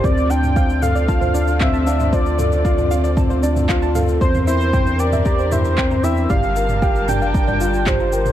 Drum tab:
SH |xxxxxxxxxxxxxxxx|xxxxxxxxxxxxxxxx|xxxxxxxxxxxxxxxx|xxxxxxxxxxxxxxxx|
CP |------------x---|------------x---|------------x---|------------x---|
T2 |o--o--o--o--o--o|--o--o--o--o--o-|-o--o--o--o--o--|o--o--o--o--o--o|
BD |o---o---o---o---|o---o---o---o---|o---o---o---o---|o---o---o---o---|